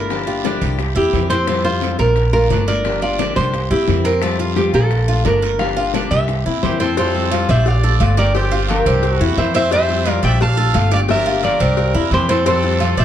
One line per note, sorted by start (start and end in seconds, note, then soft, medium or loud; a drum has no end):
0.00 0.56 G1 medium
0.00 0.10 A3 soft
0.00 0.99 E4 medium
0.00 0.26 A#4 medium
0.10 0.27 D3 medium
0.10 0.27 F3 medium
0.10 0.27 A#3 medium
0.10 0.27 D4 medium
0.10 0.26 G4 medium
0.10 high bongo medium
0.10 long guiro medium
0.27 0.44 A#3 soft
0.27 0.44 D4 soft
0.27 0.44 F4 medium
0.27 0.44 G4 medium
0.27 high bongo soft
0.44 0.78 D3 medium
0.44 0.79 F3 medium
0.44 0.78 A#3 medium
0.44 0.61 D4 medium
0.44 0.79 D4 medium
0.44 0.79 G4 medium
0.44 high bongo medium
0.44 short guiro medium
0.61 0.94 C2 medium
0.61 0.95 G4 medium
0.61 high bongo soft
0.61 short guiro medium
0.79 muted steel-string acoustic guitar stroke medium
0.79 high bongo medium
0.79 long guiro medium
0.95 1.12 E2 medium
0.95 1.13 A#3 soft
0.95 1.13 C4 soft
0.95 1.29 E4 medium
0.95 1.13 E4 soft
0.95 1.29 G4 medium
1.13 1.94 F2 medium
1.13 1.30 C3 medium
1.13 1.30 E3 medium
1.13 1.30 A#3 medium
1.13 1.31 C4 medium
1.13 1.30 E4 medium
1.13 high bongo soft
1.13 low bongo medium
1.13 short guiro medium
1.30 1.48 A#3 soft
1.30 1.46 C4 medium
1.30 1.48 C4 soft
1.30 1.47 E4 soft
1.30 1.62 C5 medium
1.30 high bongo soft
1.30 short guiro medium
1.47 1.64 F3 medium
1.47 1.65 G3 medium
1.47 1.64 C4 medium
1.47 1.65 C4 medium
1.47 1.64 F4 medium
1.47 high bongo medium
1.47 long guiro medium
1.64 1.82 G3 soft
1.64 1.82 C4 soft
1.64 1.98 F4 medium
1.64 1.82 F4 medium
1.64 1.99 C5 medium
1.64 high bongo soft
1.82 2.16 F3 medium
1.82 2.16 G3 medium
1.82 2.16 C4 medium
1.82 2.16 F4 medium
1.82 high bongo medium
1.82 short guiro medium
1.99 2.47 A#1 medium
1.99 2.32 A#4 medium
1.99 2.32 A#4 loud
1.99 high bongo soft
1.99 short guiro medium
2.16 muted steel-string acoustic guitar stroke medium
2.16 high bongo medium
2.16 long guiro medium
2.33 2.50 A3 soft
2.33 2.50 D4 soft
2.33 2.50 F4 medium
2.33 2.50 F4 soft
2.33 2.65 A#4 loud
2.50 3.31 G1 medium
2.50 2.67 D3 medium
2.50 2.67 A3 medium
2.50 2.67 D4 medium
2.50 2.68 D4 medium
2.50 2.66 F4 medium
2.50 high bongo soft
2.50 low bongo medium
2.50 short guiro medium
2.67 2.85 A3 soft
2.67 2.84 D4 soft
2.67 2.84 F4 soft
2.67 3.01 A#4 medium
2.67 3.01 D5 loud
2.67 high bongo soft
2.67 short guiro medium
2.84 3.01 D3 medium
2.84 3.01 F3 medium
2.84 3.02 A#3 medium
2.84 3.02 D4 medium
2.84 3.00 G4 medium
2.84 high bongo medium
2.84 long guiro medium
3.02 3.19 A#3 soft
3.02 3.19 D4 soft
3.02 3.19 F4 medium
3.02 3.19 G4 medium
3.02 3.34 D5 medium
3.02 high bongo soft
3.19 3.53 D3 medium
3.19 3.53 F3 medium
3.19 3.53 A#3 medium
3.19 3.36 D4 medium
3.19 3.53 D4 medium
3.19 3.54 G4 medium
3.19 high bongo medium
3.19 short guiro medium
3.36 3.69 C2 medium
3.36 3.70 G4 medium
3.36 3.68 C5 loud
3.36 high bongo soft
3.36 short guiro medium
3.54 muted steel-string acoustic guitar stroke medium
3.54 high bongo medium
3.54 long guiro medium
3.70 3.87 E2 medium
3.70 3.87 A#3 soft
3.70 3.88 C4 soft
3.70 3.87 E4 soft
3.70 4.04 E4 medium
3.70 4.04 G4 medium
3.87 4.68 F2 medium
3.87 4.04 C3 medium
3.87 4.05 E3 medium
3.87 4.05 A#3 medium
3.87 4.04 C4 medium
3.87 4.03 E4 medium
3.87 high bongo soft
3.87 low bongo medium
3.87 short guiro medium
4.04 4.22 A#3 soft
4.04 4.21 C4 loud
4.04 4.22 C4 soft
4.04 4.21 E4 medium
4.04 4.22 A#4 medium
4.04 high bongo soft
4.04 short guiro medium
4.22 4.39 F3 medium
4.22 4.39 G3 medium
4.22 4.39 C4 medium
4.22 4.38 F4 medium
4.22 4.56 A4 medium
4.22 high bongo medium
4.22 long guiro medium
4.39 4.56 G3 soft
4.39 4.56 C4 soft
4.39 4.56 F4 medium
4.39 4.73 F4 medium
4.39 high bongo soft
4.56 4.90 F3 medium
4.56 4.91 G3 medium
4.56 4.91 C4 medium
4.56 4.90 F4 medium
4.56 4.74 G4 medium
4.56 high bongo medium
4.56 short guiro medium
4.74 5.22 A#1 medium
4.74 5.07 A#3 medium
4.74 5.25 A4 loud
4.74 high bongo soft
4.74 short guiro medium
4.91 muted steel-string acoustic guitar stroke medium
4.91 high bongo medium
4.91 long guiro medium
5.08 5.25 A3 soft
5.08 5.25 D4 soft
5.08 5.25 F4 medium
5.08 5.25 F4 soft
5.25 6.06 G1 medium
5.25 5.42 D3 medium
5.25 5.42 A3 medium
5.25 5.42 D4 medium
5.25 5.41 F4 medium
5.25 5.58 A#4 medium
5.25 high bongo soft
5.25 low bongo medium
5.25 short guiro medium
5.42 5.60 A3 soft
5.42 5.60 D4 soft
5.42 5.59 F4 soft
5.42 5.76 A#4 medium
5.42 high bongo soft
5.42 short guiro medium
5.59 5.76 D3 medium
5.59 5.76 F3 medium
5.59 5.77 A#3 medium
5.59 5.76 D4 medium
5.59 5.75 G4 medium
5.59 6.07 F5 loud
5.59 high bongo medium
5.59 long guiro medium
5.76 5.94 A#3 soft
5.76 5.94 D4 medium
5.76 5.94 F4 medium
5.76 5.93 G4 medium
5.76 high bongo soft
5.94 6.28 D3 medium
5.94 6.28 F3 medium
5.94 6.28 A#3 medium
5.94 6.11 D4 medium
5.94 6.28 D4 medium
5.94 6.29 G4 medium
5.94 high bongo medium
5.94 short guiro medium
6.11 6.43 C2 medium
6.11 6.45 G4 medium
6.11 6.76 E5 loud
6.11 high bongo soft
6.11 short guiro medium
6.28 muted steel-string acoustic guitar stroke medium
6.28 high bongo medium
6.28 long guiro medium
6.46 6.62 E2 medium
6.46 6.63 A#3 soft
6.46 6.63 C4 soft
6.46 6.62 E4 soft
6.46 6.79 E4 medium
6.63 7.43 F2 medium
6.63 6.80 C3 medium
6.63 6.80 E3 medium
6.63 6.80 A#3 medium
6.63 6.80 C4 medium
6.63 6.79 E4 medium
6.63 6.80 G4 medium
6.63 6.79 C5 medium
6.63 high bongo soft
6.63 low bongo medium
6.63 short guiro medium
6.80 6.97 A#3 soft
6.80 6.96 C4 medium
6.80 6.97 C4 soft
6.80 6.97 E4 medium
6.80 6.97 A4 medium
6.80 6.97 C5 medium
6.80 high bongo soft
6.80 short guiro medium
6.97 7.14 F3 medium
6.97 7.14 G3 medium
6.97 7.31 C4 medium
6.97 7.14 C4 medium
6.97 7.13 F4 medium
6.97 7.46 A4 medium
6.97 7.46 C5 medium
6.97 cowbell loud
6.97 long guiro medium
7.15 7.31 G3 soft
7.15 7.31 C4 medium
7.15 7.31 F4 medium
7.15 cowbell medium
7.31 7.65 F3 medium
7.31 7.65 G3 medium
7.31 7.66 C4 medium
7.31 7.48 F4 medium
7.31 7.66 F4 medium
7.31 cowbell medium
7.31 short guiro medium
7.49 7.97 A#1 loud
7.49 7.69 C5 medium
7.49 7.82 D5 medium
7.49 7.68 E5 medium
7.49 cowbell medium
7.49 short guiro medium
7.66 8.17 D5 medium
7.66 8.18 F5 medium
7.66 muted steel-string acoustic guitar stroke medium
7.66 cowbell medium
7.66 long guiro medium
7.83 7.99 A3 soft
7.83 8.00 D4 soft
7.83 7.99 F4 soft
7.83 8.00 A4 medium
8.00 8.80 G1 medium
8.00 8.17 D3 medium
8.00 8.17 A3 medium
8.00 8.17 D4 medium
8.00 8.17 F4 medium
8.00 8.16 F4 medium
8.00 cowbell medium
8.00 short guiro medium
8.17 8.35 A3 soft
8.17 8.34 D4 soft
8.17 8.34 F4 soft
8.17 8.51 G4 medium
8.17 8.37 A#4 medium
8.17 8.36 D5 medium
8.17 cowbell medium
8.17 short guiro medium
8.34 8.51 D3 medium
8.34 8.51 F3 medium
8.34 8.51 A#3 medium
8.34 8.51 D4 medium
8.34 8.69 G4 medium
8.34 8.51 G4 medium
8.34 8.71 C5 medium
8.34 cowbell loud
8.34 long guiro medium
8.51 8.69 A#3 soft
8.51 8.68 D4 medium
8.51 8.85 F4 medium
8.51 8.68 G4 medium
8.69 9.02 D3 medium
8.69 9.03 F3 medium
8.69 9.02 A#3 medium
8.69 9.03 D4 medium
8.69 9.14 G4 medium
8.69 9.03 G4 medium
8.69 9.15 A#4 medium
8.69 cowbell medium
8.69 short guiro medium
8.86 9.18 C2 loud
8.86 9.19 C4 medium
8.86 short guiro medium
9.03 muted steel-string acoustic guitar stroke medium
9.03 cowbell medium
9.03 long guiro medium
9.14 9.34 F#4 medium
9.14 9.34 A4 medium
9.20 9.36 E2 medium
9.20 9.37 A#3 soft
9.20 9.37 C4 soft
9.20 9.37 E4 medium
9.20 9.54 E4 medium
9.37 10.17 F2 medium
9.37 9.54 C3 medium
9.37 9.54 E3 medium
9.37 9.54 A#3 medium
9.37 9.54 C4 medium
9.37 9.53 E4 medium
9.37 9.54 C5 medium
9.37 9.54 E5 medium
9.37 cowbell medium
9.37 short guiro medium
9.54 9.72 A#3 soft
9.54 9.71 C4 medium
9.54 9.72 C4 soft
9.54 9.71 E4 medium
9.54 9.71 C5 medium
9.54 9.72 E5 loud
9.54 cowbell medium
9.54 short guiro medium
9.71 9.88 F3 medium
9.71 9.88 G3 medium
9.71 10.05 C4 medium
9.71 9.89 C4 medium
9.71 9.87 F4 medium
9.71 10.20 C5 medium
9.71 10.20 E5 medium
9.71 cowbell loud
9.71 long guiro medium
9.89 10.05 G3 soft
9.89 10.06 C4 medium
9.89 10.05 F4 medium
9.89 cowbell medium
10.06 10.39 F3 medium
10.06 10.40 G3 medium
10.06 10.40 C4 medium
10.06 10.22 F4 medium
10.06 10.40 F4 medium
10.06 cowbell medium
10.06 short guiro medium
10.23 10.71 A#1 medium
10.23 10.56 D5 medium
10.23 10.40 E5 medium
10.23 10.41 G5 loud
10.23 cowbell medium
10.23 short guiro medium
10.40 10.89 F5 medium
10.40 10.93 A5 loud
10.40 muted steel-string acoustic guitar stroke medium
10.40 cowbell loud
10.40 long guiro medium
10.57 10.73 A3 soft
10.57 10.74 D4 medium
10.57 10.73 F4 medium
10.57 10.74 A4 medium
10.74 11.54 G1 loud
10.74 10.90 D3 medium
10.74 10.91 A3 medium
10.74 10.91 D4 medium
10.74 10.91 F4 medium
10.74 10.90 F4 medium
10.74 cowbell medium
10.74 short guiro medium
10.91 11.09 A3 soft
10.91 11.08 D4 soft
10.91 11.08 F4 soft
10.91 11.25 G4 medium
10.91 11.01 D5 medium
10.91 10.98 F5 medium
10.91 cowbell medium
10.91 short guiro medium
11.08 11.25 D3 medium
11.08 11.25 F3 medium
11.08 11.25 A#3 medium
11.08 11.25 D4 medium
11.08 11.25 G4 medium
11.08 11.42 A#4 medium
11.08 11.44 E5 medium
11.08 cowbell loud
11.08 long guiro medium
11.26 11.43 A#3 soft
11.26 11.43 D4 medium
11.26 11.59 F4 medium
11.26 11.42 G4 medium
11.43 11.77 D3 medium
11.43 11.77 F3 medium
11.43 11.76 A#3 medium
11.43 11.77 D4 medium
11.43 11.78 G4 medium
11.43 12.09 A#4 medium
11.43 12.08 D5 medium
11.43 cowbell medium
11.43 short guiro medium
11.60 11.92 C2 loud
11.60 11.93 C4 medium
11.60 short guiro medium
11.77 muted steel-string acoustic guitar stroke medium
11.77 cowbell medium
11.77 long guiro medium
11.94 12.10 E2 medium
11.94 12.12 A#3 soft
11.94 12.11 C4 soft
11.94 12.28 E4 medium
11.94 12.11 E4 medium
12.11 12.91 F2 loud
12.11 12.28 C3 medium
12.11 12.29 E3 medium
12.11 12.29 A#3 medium
12.11 12.29 C4 medium
12.11 12.28 E4 medium
12.11 12.29 G4 medium
12.11 12.29 C5 loud
12.11 cowbell medium
12.11 short guiro medium
12.29 12.46 A#3 soft
12.29 12.45 C4 loud
12.29 12.46 C4 soft
12.29 12.45 E4 medium
12.29 12.46 A4 medium
12.29 12.46 C5 medium
12.29 cowbell medium
12.29 short guiro medium
12.46 12.62 F3 medium
12.46 12.63 G3 medium
12.46 12.79 C4 loud
12.46 12.63 C4 medium
12.46 12.62 F4 medium
12.46 12.95 A4 medium
12.46 12.99 C5 medium
12.46 cowbell loud
12.46 long guiro medium
12.63 12.80 G3 soft
12.63 12.80 C4 medium
12.63 12.80 F4 medium
12.63 cowbell medium
12.80 13.05 F3 medium
12.80 13.05 G3 medium
12.80 13.05 C4 medium
12.80 12.97 F4 medium
12.80 13.05 F4 medium
12.80 cowbell medium
12.80 short guiro medium
12.97 13.05 A#1 medium
12.97 13.05 C5 medium
12.97 13.05 D5 medium
12.97 13.05 E5 loud
12.97 cowbell medium
12.97 short guiro medium